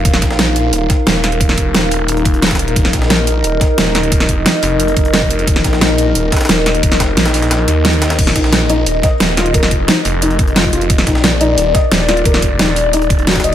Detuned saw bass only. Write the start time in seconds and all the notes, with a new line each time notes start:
0.05 D#1
0.22 A#1
0.73 D#1
1.07 D#1
1.58 F1
1.75 D#1
2.76 D#1
2.93 A#1
3.44 D#1
3.78 D#1
4.29 F1
4.63 F1
5.47 D#1
5.64 A#1
6.15 D#1
6.49 D#1
7.00 F1
7.17 A#1
7.68 D#2
8.19 D#1
8.36 A#1
8.87 D#1
9.20 D#1
9.71 F1
10.05 F1
10.90 D#1
11.07 A#1
11.58 D#1
11.92 D#1
12.42 F1
12.59 D#1